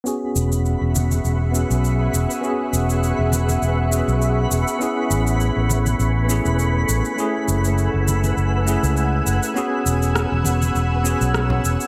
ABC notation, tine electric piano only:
X:1
M:4/4
L:1/8
Q:"Swing 16ths" 1/4=101
K:E
V:1 name="Tine electric piano"
[B,CFG]4- [B,CFG] [B,CFG]3 | [B,CFG]4- [B,CFG] [B,CFG]3 | [B,CEG]4- [B,CEG] [B,CEG]3 | [A,CEG]4- [A,CEG] [A,CEG]3 |
[B,CFG]4- [B,CFG] [B,CFG]3 |]